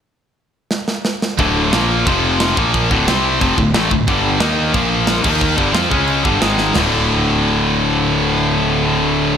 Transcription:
<<
  \new Staff \with { instrumentName = "Distorted electric guitar" } { \clef bass \time 4/4 \key bes \lydian \tempo 4 = 179 r1 | <d, a, d>4 <bes, f bes>4 <f, c f>4. <bes, f bes>8~ | <bes, f bes>8 <d, a, d>8 <c g c'>4 <f, c f>8 <d, a,>8 <a, e a>8 <d, a,>8 | <g, d g>4 <ees bes ees'>4 <bes, f bes>4. <ees bes ees'>8~ |
<ees bes ees'>8 <g, d g>8 <f c' f'>8 <cis gis cis'>4 <g, d g>8 <gis, dis gis>4 | <d, a, d>1~ | <d, a, d>1 | }
  \new Staff \with { instrumentName = "Distorted electric guitar" } { \clef bass \time 4/4 \key bes \lydian r1 | <d, a, d>4 <bes, f bes>4 <f, c f>4. <bes, f bes>8~ | <bes, f bes>8 <d, a, d>8 <c g c'>4 <f, c f>8 <d, a,>8 <a, e a>8 <d, a,>8 | <g, d g>4 <ees bes ees'>4 <bes, f bes>4. <ees bes ees'>8~ |
<ees bes ees'>8 <g, d g>8 <f c' f'>8 <cis gis cis'>4 <g, d g>8 <gis, dis gis>4 | <d, a, d>1~ | <d, a, d>1 | }
  \new Staff \with { instrumentName = "Fingered electric bass" } { \clef bass \time 4/4 \key bes \lydian r1 | d,,4 bes,,4 f,,4. bes,,8~ | bes,,8 d,,8 c,4 f,,8 d,,8 a,,8 d,,8 | g,,4 ees,4 bes,,4. ees,8~ |
ees,8 g,,8 f,8 cis,4 g,,8 gis,,4 | d,,1~ | d,,1 | }
  \new DrumStaff \with { instrumentName = "Drums" } \drummode { \time 4/4 r4 r4 sn8 sn8 sn8 sn8 | <cymc bd>4 <cymc sn>4 <cymc bd>4 <cymc sn>8 bd8 | <cymc bd>8 bd8 <cymc sn>4 <cymc bd>8 bd8 <cymc sn>8 bd8 | <cymc bd>4 <cymc sn>4 <cymc bd>4 <cymc sn>8 <cymc bd>8 |
<cymc bd>8 bd8 <cymc sn>8 bd8 cymc8 bd8 <cymc sn>8 sn8 | <cymc sn tomfh>4 r4 r4 r4 | r4 r4 r4 r4 | }
>>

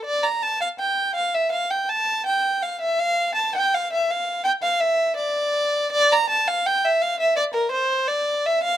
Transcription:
\new Staff \with { instrumentName = "Violin" } { \time 4/4 \key d \minor \tempo 4 = 82 d''16 bes''16 a''16 f''16 g''8 f''16 e''16 f''16 g''16 a''8 g''8 f''16 e''16 | f''8 a''16 g''16 f''16 e''16 f''8 g''16 f''16 e''8 d''4 | d''16 bes''16 a''16 f''16 g''16 e''16 f''16 e''16 d''16 bes'16 c''8 d''8 e''16 f''16 | }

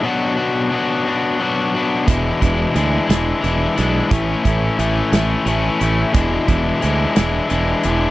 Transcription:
<<
  \new Staff \with { instrumentName = "Overdriven electric guitar" } { \time 6/8 \key e \mixolydian \tempo 4. = 59 <b, fis b d' fis'>8 <b d' fis'>8 <fis b d' fis'>8 <b d' fis'>8 <fis b d' fis'>8 <b d' fis'>8 | <e, b, e gis d' e'>8 <e gis d' e'>8 <e gis d' e'>8 <e gis d' e'>8 <e gis d' e'>8 <e gis d' e'>8 | <a, e a cis' e'>8 <a cis' e'>8 <e a cis' e'>8 <a cis' e'>8 <e a cis' e'>8 <a cis' e'>8 | <e, b, e gis d' e'>8 <e gis d' e'>8 <e gis d' e'>8 <e gis d' e'>8 <e gis d' e'>8 <e gis d' e'>8 | }
  \new Staff \with { instrumentName = "Fingered electric bass" } { \clef bass \time 6/8 \key e \mixolydian r2. | e,,8 e,,8 d,8 e,,8 e,,8 b,,8 | a,,8 a,,8 a,,8 a,,8 a,,8 a,,8 | e,,8 e,,8 d,8 e,,8 e,,8 e,,8 | }
  \new DrumStaff \with { instrumentName = "Drums" } \drummode { \time 6/8 r4. r4. | <hh bd>8 <hh bd>8 hh8 <hh sn>8 hh8 hh8 | <hh bd>8 <hh bd>8 hh8 <hh sn>8 hh8 hh8 | <hh bd>8 <hh bd>8 hh8 <hh sn>8 hh8 hh8 | }
>>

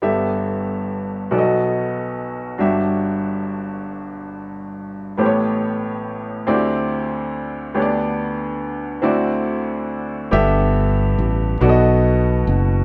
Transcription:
<<
  \new Staff \with { instrumentName = "Upright piano" } { \time 6/8 \key g \major \tempo 4. = 47 <g,, g, b g' a' e''>4. <b,, b, b fis' a' d'' dis''>4. | <g,, g, d' fis' g' e''>2. | <a,, a, b g' a' c'' cis''>4. <d, d c' e' fis' g' d''>4. | <d, d b d' g' cis'' d''>4. <d, d c' e' fis' d''>4. |
<g, b g' a' e''>4. <b, b fis' a' d'' dis''>4. | }
  \new Staff \with { instrumentName = "Fingered electric bass" } { \clef bass \time 6/8 \key g \major r2. | r2. | r2. | r2. |
g,,4 a,,8 b,,4 fis,,8 | }
>>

